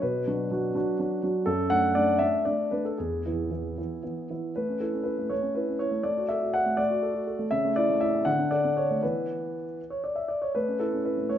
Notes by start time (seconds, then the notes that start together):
0.02 B2 B4
0.27 F#3 D4 F#4
0.52 F#3 D4 F#4
0.74 F#3 D4 F#4
0.99 F#3 D4 F#4
1.23 F#3 D4 F#4
1.46 F#2 A4
1.70 A3 D4 F#5
1.95 A3 D4 D5
2.19 A3 D4 E5
2.45 A3 D4 D5
2.71 A3 D4 B4
2.85 A4
2.98 E2 G#4
3.26 E3 B3 E4
3.51 E3 B3 E4
3.78 E3 B3 E4
4.03 E3 B3 E4
4.30 E3 B3 E4
4.56 A3 B4
4.69 C#4
4.80 E4 A4
4.94 C#4
5.03 E4 B4
5.19 A3
5.30 A3 C#5
5.42 C#4
5.55 E4 B4
5.69 C#4
5.79 E4 C#5
5.91 A3
6.03 A3 D5
6.17 F#4
6.29 A4 E5
6.42 F#4
6.54 A4 F#5
6.66 A3
6.77 A3 D5
6.90 F#4
7.03 A4
7.27 A4
7.39 A3
7.51 C#3 E5
7.65 A3
7.76 E4 D5
7.90 A3
8.01 E4 E5
8.14 C#4
8.25 D3 F#5
8.39 D4
8.51 A4 D5
8.65 D4
8.77 A4 C#5
8.91 A3
9.02 E3 B3 E4 B4
9.90 C#5
10.04 D5
10.16 E5
10.28 D5
10.42 C#5
10.55 A3 B4
10.68 C#4
10.80 E4 A4
10.93 C#4
11.05 E4 B4
11.18 A3
11.29 A3 C#5